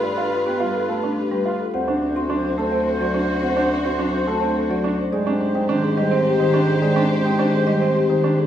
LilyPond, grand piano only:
\new Staff \with { instrumentName = "Grand piano" } { \time 3/4 \key d \phrygian \tempo 4 = 106 b'16 f'16 r16 g'16 f'16 r16 a'16 d'16 r16 g'16 f'16 r16 | c''16 d'16 r16 fis'16 d'16 r16 a'16 c'16 r16 fis'16 d'16 r16 | c''16 d'16 r16 fis'16 d'16 r16 a'16 c'16 r16 fis'16 d'16 r16 | aes'16 d'16 r16 ees'16 d'16 r16 g'16 c'16 r16 ees'16 d'16 r16 |
aes'16 d'16 r16 ees'16 d'16 r16 g'16 c'16 r16 ees'16 d'16 r16 | }